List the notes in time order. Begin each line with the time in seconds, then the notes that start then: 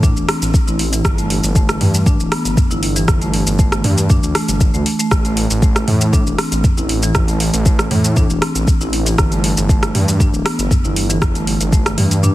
Already playing: A2
0.03 D4, kick, mid tom, shaker
0.17 E1, shaker
0.28 C4, cross-stick, open hi-hat
0.42 A1, closed hi-hat, shaker
0.54 kick, shaker
0.67 A1 E4, shaker
0.79 open hi-hat
0.93 E3, closed hi-hat, shaker
1.05 G1, kick, cross-stick, shaker
1.18 A3, closed hi-hat, shaker
1.30 open hi-hat
1.44 G1, closed hi-hat, shaker
1.55 A3, kick, shaker
1.69 cross-stick, closed hi-hat, shaker
1.81 G2 E3, mid tom, open hi-hat
1.94 closed hi-hat, shaker
2.06 D4, kick, shaker
2.20 D1, shaker
2.32 B3, cross-stick, open hi-hat
2.45 G1, closed hi-hat, shaker
2.57 kick, mid tom, shaker
2.71 G1 E4, shaker
2.83 open hi-hat
2.96 E3, closed hi-hat, shaker
3.08 G1, kick, cross-stick, mid tom, shaker
3.21 A3, closed hi-hat, shaker
3.34 open hi-hat
3.47 G1, closed hi-hat, shaker
3.59 A3, kick, shaker
3.72 cross-stick, closed hi-hat, shaker
3.84 G2 E3, mid tom, open hi-hat
3.98 closed hi-hat, shaker
4.10 D4, kick, mid tom, shaker
4.23 D2, shaker
4.35 A3, cross-stick, open hi-hat
4.48 G1, closed hi-hat, shaker
4.61 kick, shaker
4.74 D2 A3, shaker
4.86 open hi-hat
4.99 A3, closed hi-hat, shaker
5.11 A1, kick, cross-stick, shaker
5.25 A3, closed hi-hat, shaker
5.37 open hi-hat
5.50 A1, closed hi-hat, shaker
5.62 A3, kick, shaker
5.76 cross-stick, closed hi-hat, shaker
5.88 A2 E3, mid tom, open hi-hat
6.01 closed hi-hat, shaker
6.13 D4, kick, shaker
6.27 E1, shaker
6.38 C4, cross-stick, open hi-hat
6.52 A1, closed hi-hat, shaker
6.64 kick, mid tom, shaker
6.77 A1 E4, shaker
6.89 open hi-hat
7.03 E3, closed hi-hat, shaker
7.15 A1, kick, cross-stick, mid tom, shaker
7.28 A3, closed hi-hat, shaker
7.40 open hi-hat
7.54 A1, closed hi-hat, shaker
7.66 A3, kick, shaker
7.79 cross-stick, closed hi-hat, shaker
7.91 A2 E3, mid tom, open hi-hat
8.04 closed hi-hat, shaker
8.16 D4, kick, mid tom, shaker
8.30 E1, shaker
8.42 C4, cross-stick, open hi-hat
8.55 A1, closed hi-hat, shaker
8.68 kick, shaker
8.81 A1 E4, shaker
8.93 open hi-hat
9.06 E3, closed hi-hat, shaker
9.18 G1, kick, cross-stick, shaker
9.32 A3, closed hi-hat, shaker
9.44 open hi-hat
9.57 G1, closed hi-hat, shaker
9.69 A3, kick, shaker
9.83 cross-stick, closed hi-hat, shaker
9.94 G2 E3, mid tom, open hi-hat
10.08 closed hi-hat, shaker
10.20 D4, kick, shaker
10.33 D1, shaker
10.45 B3, cross-stick, open hi-hat
10.59 G1, closed hi-hat, shaker
10.71 kick, mid tom, shaker
10.84 G1 E4, shaker
10.96 open hi-hat
11.09 E3, closed hi-hat, shaker
11.22 G1, kick, cross-stick, mid tom, shaker
11.35 A3, closed hi-hat, shaker
11.47 open hi-hat
11.60 G1, closed hi-hat, shaker
11.72 A3, kick, shaker
11.86 cross-stick, closed hi-hat, shaker
11.98 G2 E3, mid tom, open hi-hat
12.11 closed hi-hat, shaker
12.23 D4, mid tom, shaker